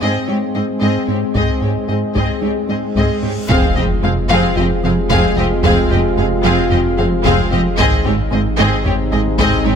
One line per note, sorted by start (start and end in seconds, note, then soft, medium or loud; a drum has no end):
0.00 0.10 G#2 medium
0.00 0.18 G#2 medium
0.00 3.19 G#3 soft
0.00 3.45 G#3 medium
0.00 0.18 G#3 medium
0.00 3.19 C4 soft
0.00 3.46 C4 medium
0.00 0.27 C4 soft
0.00 3.46 G#4 medium
0.00 0.27 G#4 medium
0.00 3.49 D#5 medium
0.00 0.26 D#5 medium
0.28 0.37 G#2 soft
0.28 0.44 G#3 medium
0.28 0.36 C4 soft
0.28 0.44 D#4 medium
0.28 0.36 G4 soft
0.28 0.36 C#5 soft
0.55 0.63 G#2 soft
0.55 0.71 G#3 soft
0.55 0.63 C4 soft
0.55 0.71 D#4 soft
0.55 0.63 G#4 soft
0.55 0.63 D#5 soft
0.81 0.98 G#2 medium
0.81 0.90 G#2 soft
0.81 0.98 G#3 medium
0.81 1.07 C4 soft
0.81 1.06 G#4 soft
0.81 1.06 D#5 soft
1.07 1.24 G#2 medium
1.07 1.17 G#2 soft
1.07 1.24 C4 soft
1.07 1.17 C4 soft
1.07 1.17 G4 soft
1.07 1.15 C#5 soft
1.34 1.51 G#2 medium
1.34 1.44 G#2 soft
1.34 1.51 G#3 medium
1.34 1.60 C4 soft
1.34 1.60 G#4 soft
1.34 1.60 D#5 soft
1.34 taiko medium
1.34 reverse cymbal soft
1.61 1.78 G#2 soft
1.61 1.71 G#2 soft
1.61 1.71 C4 soft
1.61 1.71 G4 soft
1.61 1.78 G#4 medium
1.61 1.69 C#5 soft
1.88 2.05 G#2 soft
1.88 1.98 G#2 soft
1.88 1.98 C4 soft
1.88 2.05 G#4 soft
1.88 1.98 G#4 soft
1.88 1.97 D#5 soft
2.15 2.31 G#2 medium
2.15 2.24 G#2 soft
2.15 2.31 G#3 medium
2.15 2.41 C4 soft
2.15 2.40 G#4 soft
2.15 2.41 D#5 soft
2.15 taiko medium
2.42 2.51 G#2 soft
2.42 2.58 G#3 medium
2.42 2.51 C4 soft
2.42 2.58 D#4 soft
2.42 2.51 G4 soft
2.42 2.50 C#5 soft
2.69 2.78 G#2 soft
2.69 2.85 G#3 soft
2.69 2.78 C4 soft
2.69 2.85 D#4 soft
2.69 2.78 G#4 soft
2.69 2.77 D#5 soft
2.96 3.12 G#2 medium
2.96 3.04 G#2 soft
2.96 3.12 G#3 medium
2.96 3.21 C4 soft
2.96 3.22 G#4 soft
2.96 3.21 D#5 soft
2.96 taiko medium
3.23 3.39 G#2 medium
3.23 3.31 G#2 soft
3.23 3.39 C4 soft
3.23 3.32 C4 soft
3.23 3.31 G4 soft
3.23 3.31 C#5 soft
3.49 7.80 F1 medium
3.49 3.58 F1 medium
3.49 3.65 F2 loud
3.49 3.58 F2 medium
3.49 7.75 C3 medium
3.49 3.66 F3 loud
3.49 7.74 G#3 medium
3.49 7.75 G#3 medium
3.49 7.74 C4 medium
3.49 3.75 C4 medium
3.49 7.75 C4 medium
3.49 7.74 F4 medium
3.49 3.75 G#4 medium
3.49 7.75 G#4 medium
3.49 3.74 F5 medium
3.49 7.75 F5 medium
3.49 taiko medium
3.49 impact medium
3.76 3.85 F1 medium
3.76 3.84 F2 medium
3.76 3.93 F2 medium
3.76 3.92 G#3 medium
3.76 3.85 C4 medium
3.76 3.86 G4 medium
3.76 3.84 D#5 medium
4.03 4.12 F1 medium
4.03 4.19 F2 medium
4.03 4.12 F2 medium
4.03 4.19 G#3 medium
4.03 4.11 C4 medium
4.03 4.12 G#4 medium
4.03 4.11 F5 medium
4.29 4.39 F1 medium
4.29 4.46 F2 loud
4.29 4.38 F2 medium
4.29 4.46 F3 loud
4.29 4.55 C4 medium
4.29 4.56 G#4 medium
4.29 4.54 F5 medium
4.56 4.65 F1 medium
4.56 4.73 F2 medium
4.56 4.65 F2 medium
4.56 4.65 C4 medium
4.56 4.73 F4 medium
4.56 4.66 G4 medium
4.56 4.64 D#5 medium
4.56 taiko low medium
4.83 4.92 F1 medium
4.83 4.92 F2 medium
4.83 5.00 F3 medium
4.83 5.00 C4 medium
4.83 4.92 C4 medium
4.83 4.93 G#4 medium
4.83 4.92 F5 medium
5.10 5.18 F1 medium
5.10 5.26 F2 medium
5.10 5.19 F2 medium
5.10 5.26 F3 loud
5.10 5.36 C4 medium
5.10 5.36 G#4 medium
5.10 5.35 F5 medium
5.10 taiko medium
5.37 5.46 F1 medium
5.37 5.45 F2 medium
5.37 5.53 F3 medium
5.37 5.53 C4 medium
5.37 5.46 C4 medium
5.37 5.47 G4 medium
5.37 5.45 D#5 medium
5.64 5.72 F1 medium
5.64 5.80 F2 loud
5.64 5.72 F2 medium
5.64 5.80 F3 medium
5.64 5.89 C4 medium
5.64 5.89 G#4 medium
5.64 5.89 F5 medium
5.64 taiko medium
5.90 5.99 F1 medium
5.90 5.99 F2 medium
5.90 6.07 F2 medium
5.90 6.07 G#3 medium
5.90 5.99 C4 medium
5.90 5.98 G4 medium
5.90 5.99 D#5 medium
6.17 6.26 F1 medium
6.17 6.34 F2 medium
6.17 6.26 F2 medium
6.17 6.34 G#3 medium
6.17 6.26 C4 medium
6.17 6.26 G#4 medium
6.17 6.25 F5 medium
6.44 6.53 F1 medium
6.44 6.53 F2 medium
6.44 6.61 F2 loud
6.44 6.61 F3 medium
6.44 6.70 C4 medium
6.44 6.69 G#4 medium
6.44 6.69 F5 medium
6.70 6.79 F1 medium
6.70 6.88 F2 medium
6.70 6.80 F2 medium
6.70 6.79 C4 medium
6.70 6.87 F4 medium
6.70 6.79 G4 medium
6.70 6.78 D#5 medium
6.70 taiko low medium
6.97 7.07 F1 medium
6.97 7.07 F2 medium
6.97 7.15 F3 medium
6.97 7.14 C4 medium
6.97 7.06 C4 medium
6.97 7.05 G#4 medium
6.97 7.05 F5 medium
7.24 7.34 F1 medium
7.24 7.33 F2 medium
7.24 7.41 F2 loud
7.24 7.41 F3 loud
7.24 7.50 C4 medium
7.24 7.49 G#4 medium
7.24 7.49 F5 medium
7.24 taiko medium
7.51 7.60 F1 medium
7.51 7.60 F2 medium
7.51 7.68 F3 medium
7.51 7.68 C4 medium
7.51 7.60 C4 medium
7.51 7.59 G4 medium
7.51 7.60 D#5 medium
7.77 9.76 G#1 medium
7.77 7.87 G#1 medium
7.77 7.95 G#2 loud
7.77 7.88 G#2 medium
7.77 9.76 C3 medium
7.77 7.94 G#3 medium
7.77 9.76 G#3 medium
7.77 8.03 C4 medium
7.77 9.76 C4 medium
7.77 9.76 D#4 medium
7.77 8.03 G#4 medium
7.77 9.76 G#4 medium
7.77 8.03 D#5 medium
7.77 9.76 D#5 medium
7.77 taiko medium
8.05 8.14 G#1 medium
8.05 8.22 G#2 medium
8.05 8.14 G#2 medium
8.05 8.21 C4 medium
8.05 8.14 C4 medium
8.05 8.14 G4 medium
8.05 8.13 C#5 medium
8.31 8.40 G#1 medium
8.31 8.48 G#2 medium
8.31 8.41 G#2 medium
8.31 8.48 C4 medium
8.31 8.40 C4 medium
8.31 8.39 G#4 soft
8.31 8.40 D#5 medium
8.58 8.67 G#1 medium
8.58 8.75 G#2 loud
8.58 8.68 G#2 medium
8.58 8.74 G#3 medium
8.58 8.84 C4 medium
8.58 8.83 G#4 medium
8.58 8.83 D#5 medium
8.84 8.94 G#1 medium
8.84 9.02 G#2 medium
8.84 8.94 G#2 medium
8.84 8.93 C4 medium
8.84 8.94 G4 medium
8.84 9.02 G#4 medium
8.84 8.92 C#5 medium
8.84 taiko low medium
9.12 9.21 G#1 medium
9.12 9.21 G#2 medium
9.12 9.29 G#3 medium
9.12 9.20 C4 medium
9.12 9.28 D#4 medium
9.12 9.21 G#4 medium
9.12 9.20 D#5 medium
9.39 9.48 G#1 medium
9.39 9.55 G#2 medium
9.39 9.48 G#2 medium
9.39 9.55 G#3 loud
9.39 9.64 C4 medium
9.39 9.64 G#4 medium
9.39 9.64 D#5 medium
9.39 taiko medium
9.64 9.75 G#1 medium
9.64 9.74 G#2 medium
9.64 9.76 G#3 medium
9.64 9.74 C4 medium
9.64 9.76 D#4 medium
9.64 9.74 G4 medium
9.64 9.72 C#5 medium